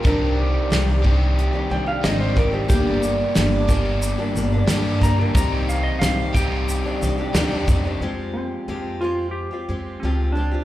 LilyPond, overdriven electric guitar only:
\new Staff \with { instrumentName = "Overdriven electric guitar" } { \clef bass \time 4/4 \key c \minor \tempo 4 = 90 <c ees g c' g'>4. <c ees g c' g'>4. <c ees g c' g'>4 | <g, d g bes d' g'>4. <g, d g bes d' g'>4. <g, d g bes d' g'>4 | <c g c' ees' g'>4. <c g c' ees' g'>4. <c g c' ees' g'>4 | r1 | }